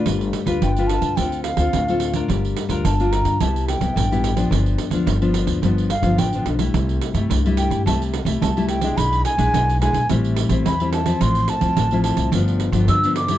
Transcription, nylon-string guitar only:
\new Staff \with { instrumentName = "Nylon-string guitar" } { \time 4/4 \key g \mixolydian \tempo 4 = 108 << { <d' f' b'>8. <d' f' b'>8 <d' f' b'>8. <c' f' a'>8. <c' f' a'>8 <c' f' a'>8 <d' f' bes'>16~ | <d' f' bes'>8. <d' f' bes'>8 <d' f' bes'>8. <g b e'>8. <g b e'>8 <g b e'>8 <f b d'>16~ | <f b d'>8. <f b d'>8 <f b d'>8. <f b d'>8 r16 <f b d'>8 <f b d'>8 <g a e'>16~ | <g a e'>8. <g a e'>8 <g a e'>8. <g a e'>8 r16 <g a e'>8 <g a e'>8 <aes d' e'>16~ |
<aes d' e'>8. <gis d' e'>8. <gis d' e'>16 r16 <g c' e'>8. <g c' e'>8 <g c' e'>8 <f c' e'>16~ | <f c' e'>8. <f c' e'>8 <f c' e'>8. <f b d'>8. <f b d'>8 <f b d'>8 <g d' e'>16 | } \\ { g4 d4 d4 a,4 | g4 d4 c4 g,4 | g,4 d4 g,4 d4 | c4 g,4 c4 c4 |
b,4 b,4 a,4 e4 | a,4 a,4 g,4 d4 | } >> }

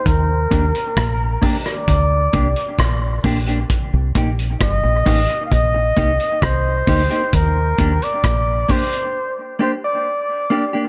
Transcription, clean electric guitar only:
\new Staff \with { instrumentName = "Clean electric guitar" } { \time 4/4 \key ees \major \tempo 4 = 66 r8 <bes d' g'>16 r8. <bes d' g'>16 r8. <bes d' g'>16 r8. <bes d' g'>16 <bes d' g'>16 | r8 <bes ees' g'>16 r8. <bes ees' g'>16 r8. <bes ees' g'>16 r8. <bes ees' g'>16 <bes ees' g'>16 | r8 <bes d' g'>16 r8. <bes d' g'>16 r8. <bes d' g'>16 r8. <bes d' g'>16 <bes d' g'>16 | }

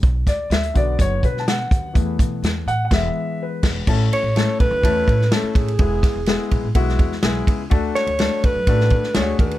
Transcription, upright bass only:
\new Staff \with { instrumentName = "Upright bass" } { \clef bass \time 4/4 \key a \major \tempo 4 = 125 b,,8 d,8 d,8 b,,8 fis,,8 b,4 dis,8 | e,8 b,8 e,8 a,8 e,,8 r4 e,,8 | a,,8 r16 a,,8 r16 b,,16 cis,16 e,8 a,8 r8 a,,8 | e,,8 r16 e,,8 r16 b,,16 a,,16 b,,8 e,8 b,,8 cis,8 |
d,8 r16 d,8 r16 e,16 fis,16 a,,8 d8 d,8 dis,8 | }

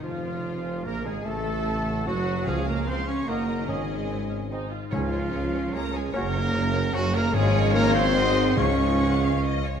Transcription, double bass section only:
\new Staff \with { instrumentName = "Double bass section" } { \clef bass \time 3/4 \key des \major \tempo 4 = 148 f,,2 bes,,8 aes,,8 | a,,2 ges,,4 | des,2 ges,,4 | aes,,2~ aes,,8 r8 |
des,4 des,4 des,4 | ges,,4 ges,,4 ges,,4 | aes,,2. | des,2~ des,8 r8 | }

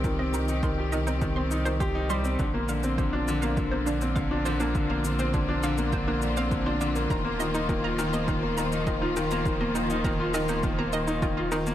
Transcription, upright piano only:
\new Staff \with { instrumentName = "Upright piano" } { \time 4/4 \key bes \mixolydian \tempo 4 = 102 ees16 c'16 ees16 ees'16 ees16 g'16 ees16 c'16 ees16 c'16 ees'16 ees16 g'16 ees'16 g16 c'16 | d16 bes16 d16 c'16 d16 d'16 d16 bes16 d16 bes16 d16 c'16 d16 d'16 d16 bes16 | d16 bes16 d16 c'16 d16 d'16 d16 bes16 d16 bes16 d16 c'16 d16 d'16 d16 bes16 | ees16 bes16 ees16 ees'16 ees16 f'16 ees16 bes16 ees16 bes16 ees16 ees'16 ees16 f'16 ees16 bes16 |
ees16 bes16 ees16 ees'16 ees16 f'16 ees16 bes16 ees16 bes16 ees16 ees'16 ees16 f'16 ees16 bes16 | }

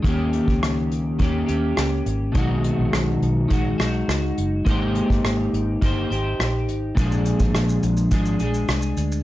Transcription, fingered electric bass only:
\new Staff \with { instrumentName = "Fingered electric bass" } { \clef bass \time 4/4 \key aes \major \tempo 4 = 104 ees,8. des,4~ des,16 ees,8 ees,8 des,8 aes,,8 | b,,8. bes,,16 b,,8 b,,8 bes,,8 b,,8 des,8 fis,,8 | aes,,8. g,,16 aes,,8 aes,,8 g,,8 aes,,8 bes,,8 aes,,8 | bes,,8. aes,,16 bes,,8 bes,,8 aes,,8 bes,,8 c,8 d,8 | }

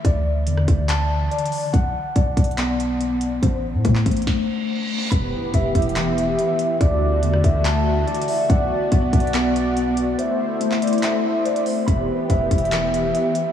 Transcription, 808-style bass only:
\new Staff \with { instrumentName = "808-style bass" } { \clef bass \time 4/4 \key e \minor \tempo 4 = 142 d,4 e,8 d,4. r4 | b,,8 r8 b,,8 b,,2~ b,,8 | a,,8. a,16 a,8 a,,8 r2 | e,,8 r8 e,,8 e,,4. r4 |
d,4 e,8 d,4. r4 | b,,8 r8 b,,8 b,,2~ b,,8 | r1 | e,,8 r8 e,,8 e,,4. r4 | }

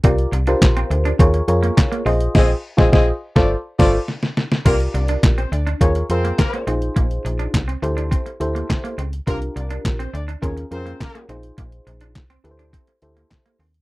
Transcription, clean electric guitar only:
\new Staff \with { instrumentName = "Clean electric guitar" } { \time 4/4 \key c \mixolydian \tempo 4 = 104 c'16 r8 d'16 r16 c'16 r16 d'16 c'16 r8 bes16 r16 bes16 c'16 r16 | r1 | c'16 r8 d'16 r16 c'16 r16 d'16 c'16 r8 bes16 r16 bes16 c'16 r16 | bes16 r8 d'16 r16 c'16 r16 d'16 c'16 r8 bes16 r16 bes16 c'16 r16 |
c'16 r8 d'16 r16 c'16 r16 d'16 c'16 r8 bes16 r16 bes16 c'16 r16 | bes16 r8 d'16 r16 c'16 r16 d'16 c'16 r8 bes16 r16 bes16 c'16 r16 | }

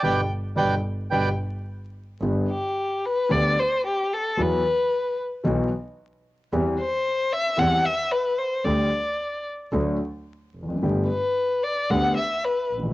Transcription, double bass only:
\new Staff \with { instrumentName = "Double bass" } { \clef bass \time 4/4 \key g \major \tempo 4 = 111 g,,8 r8 g,,8 r8 g,,8 r4. | g,,8 r4. d,8 r4. | e,8 r4. b,,8 r4. | e,8 r4. e,8 r4. |
d,8 r4. d,8 r4 f,,8 | g,,8 r4. d,8 r4 bes,,8 | }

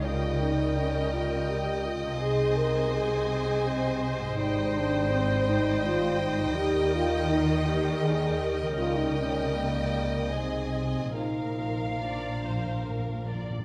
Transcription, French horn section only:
\new Staff \with { instrumentName = "French horn section" } { \time 3/4 \key aes \major \tempo 4 = 82 f'8 ees'8 des'8 f'8 g'8 f'8 | aes'8 bes'8 aes'4 c'8 r8 | \key ees \major ees'8 d'8 c'8 ees'8 f'8 ees'8 | g'8 f'8 ees'8 g'8 aes'8 g'8 |
f'16 ees'16 des'8 bes4 c'4 | ees'4 d'4. r8 | }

